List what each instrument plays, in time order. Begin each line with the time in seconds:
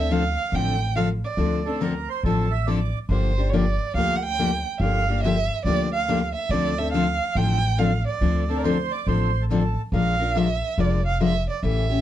Already playing: upright bass D2, steel-string acoustic guitar C4 D4
0.07 steel-string acoustic guitar D3, violin E5
0.11 steel-string acoustic guitar F3 C4 D4 A4, violin F5
0.52 upright bass A1, steel-string acoustic guitar D3 F3 C4 D4 A4, violin G5
0.96 steel-string acoustic guitar D3 F3 C4 D4 A4, violin F5
1.25 violin D5
1.37 upright bass D2, steel-string acoustic guitar D3 F3 C4 D4 A4
1.66 steel-string acoustic guitar C4 D4 A4, accordion A4
1.81 steel-string acoustic guitar D3 F3 C4 D4 A4, accordion A#4
2.09 accordion C5
2.23 upright bass A1, steel-string acoustic guitar D3 F3 C4 D4 A4, accordion A4
2.51 accordion E5
2.67 steel-string acoustic guitar D3 F3 C4 D4 A4, accordion D5
3.09 upright bass G1, steel-string acoustic guitar D3 F3 A#3 D4 G4, violin C5
3.38 steel-string acoustic guitar A#3 D4 G4
3.49 steel-string acoustic guitar D3 F3, violin C#5
3.54 steel-string acoustic guitar A#3 D4 G4, violin D5
3.94 upright bass D2, steel-string acoustic guitar D3 F3 A#3 D4 G4, violin F5
4.16 violin F#5
4.23 violin G5
4.39 steel-string acoustic guitar D3 F3 A#3 D4 G4
4.78 upright bass G1, steel-string acoustic guitar D3 F3, violin E5 F5
4.82 steel-string acoustic guitar A#3 D4 G4
5.09 steel-string acoustic guitar A#3 D4 G4
5.24 steel-string acoustic guitar D3 F3 A#3 D4 G4, violin E5
5.65 upright bass D2, steel-string acoustic guitar D3 F3 A#3 D4 G4, violin D5
5.93 violin F5
6.08 steel-string acoustic guitar D3 F3 A#3 D4 G4
6.35 violin E5
6.49 upright bass D2, steel-string acoustic guitar D3 F3 C4 D4 A4, violin D5
6.79 steel-string acoustic guitar C4 D4 A4, violin E5
6.93 steel-string acoustic guitar D3 F3 C4 D4 A4, violin F5
7.35 upright bass A1, steel-string acoustic guitar D3 F3 C4 D4 A4, violin G5
7.78 steel-string acoustic guitar D3 F3 C4 D4 A4, violin F5
8.07 violin D5
8.21 upright bass D2, steel-string acoustic guitar D3 F3 C4 D4 A4
8.49 steel-string acoustic guitar C4 D4 A4, accordion A4
8.57 accordion A#4
8.64 steel-string acoustic guitar D3 F3 C4 D4 A4, accordion C5
8.91 accordion D5
9.07 upright bass A1, steel-string acoustic guitar D3 F3 C4 D4 A4, accordion C5
9.41 accordion A4
9.49 steel-string acoustic guitar D3 F3 C4 D4 A4, accordion A4
9.92 upright bass A#1, steel-string acoustic guitar F3 G#3 D4 F4 A#4, violin F5
10.19 steel-string acoustic guitar D4 F4 A#4
10.35 steel-string acoustic guitar F3 G#3 D4 F4 A#4, violin E5
10.78 upright bass F1, steel-string acoustic guitar F3 G#3 D4 F4 A#4, violin D5
11.06 violin F5
11.20 steel-string acoustic guitar F3 G#3 D4 F4 A#4, violin E5
11.50 violin D5
11.63 upright bass A1, steel-string acoustic guitar C#3 E3 A3 C#4 G4, violin E5
11.90 steel-string acoustic guitar A3 C#4 G4